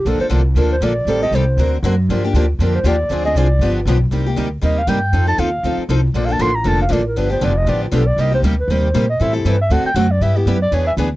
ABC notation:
X:1
M:4/4
L:1/8
Q:"Swing" 1/4=236
K:Gm
V:1 name="Clarinet"
A c z2 B c d2- | d e c3 z3 | z4 B c d2- | d e d3 z3 |
z4 e f g2- | g a f3 z3 | (3d f a c' b a f d B | =B c d e d F A d |
e c z =B c3 e | =e G =B e ^f g f d | =e G =B d ^c e z2 |]
V:2 name="Steel-string acoustic guitar"
[D,F,B,DA] [B,DA] [D,F,B,DA] z [D,F,B,DA] z [D,F,B,DA] z | [E,G,CGA] [CGA] [E,G,CGA] z [D,^A,C^F^A] z [D,A,CFA] z | [D,F,B,DG] [B,DG] [D,F,B,DG] z [D,F,B,DG] z [D,F,B,DG] z | [D,F,CD_A] [CDA] [D,F,CDA] z [D,F,=B,DG] z [D,F,B,DG] z |
[C,G,B,EG] [B,EG] [C,G,B,EG] z [C,G,B,EG] z [C,G,B,EG] z | [F,CEA] [CEA] [F,CEA] z [F,CEA] z [F,CEA] z | [D,F,B,DA] [B,DA] [D,F,B,DA] z [D,F,B,DA] z [D,F,B,DA] z | [D,F,=B,DG] [B,DG] [D,F,B,DG] z [D,F,B,DG] z [D,F,B,DG] z |
[C,G,B,EG] [B,EG] [C,G,B,EG] z [C,G,B,EG] z [C,G,B,EG] z | [=E,G,C=EA] [CEA] [E,G,CEA] z [D,A,C^FA] z [D,A,CFA] z | [G,=B,=EG] [B,EG] [G,B,EG] z [=E,B,D^G] z [E,B,DG] z |]
V:3 name="Steel-string acoustic guitar"
[D,F,B,DA] z [D,F,B,DA] z [D,F,B,DA] z [D,F,B,DA] z | [E,G,CGA] z [E,G,CGA] z [D,^A,C^F^A] z [D,A,CFA] z | [D,F,B,DG] z [D,F,B,DG] z [D,F,B,DG] z [D,F,B,DG] z | [D,F,CD_A] z [D,F,CDA] z [D,F,=B,DG] z [D,F,B,DG] z |
[C,G,B,EG] z [C,G,B,EG] z [C,G,B,EG] z [C,G,B,EG] z | [F,CEA] z [F,CEA] z [F,CEA] z [F,CEA] z | [D,F,B,DA] z [D,F,B,DA] z [D,F,B,DA] z [D,F,B,DA] z | [D,F,=B,DG] z [D,F,B,DG] z [D,F,B,DG] z [D,F,B,DG] z |
[C,G,B,EG] z [C,G,B,EG] z [C,G,B,EG] z [C,G,B,EG] z | [=E,G,C=EA] z [E,G,CEA] z [D,A,C^FA] z [D,A,CFA] z | [G,=B,=EG] z [G,B,EG] z [=E,B,D^G=B] z [E,B,DGB] z |]
V:4 name="Upright bass" clef=bass
B,,, z C,,2 D,,2 B,,,2 | A,,,2 C,,2 D,,2 ^F,,2 | G,,2 D,,2 F,,2 E,,2 | D,,2 C,,2 G,,,2 =B,,,2 |
C,,2 D,,2 E,,2 G,,2 | F,,2 E,,2 D,, z C,,2 | B,,,2 A,,,2 F,,,2 A,,,2 | G,,,2 F,,,2 A,,,2 =B,,,2 |
C,,2 D,,2 E,,2 B,,2 | A,,2 G,,2 D,, z ^F,,2 | G,,2 ^F,,2 =E,,2 D,,2 |]